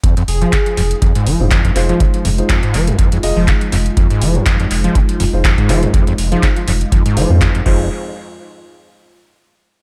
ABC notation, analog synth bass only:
X:1
M:4/4
L:1/16
Q:"Swing 16ths" 1/4=122
K:Fm
V:1 name="Analog synth bass" clef=bass
z2 F,,, z3 F,,, z3 F,,, F,,, z2 F,,, z | z2 F,,, z3 F,,, z3 F,,, F,,, z2 F,,, z | z2 F,,, z3 F,,, z3 F,,, F,,, z2 F,,, z | z2 F,,, z3 F,,, z3 F,,, F,, z2 F,,,2 |
z16 |]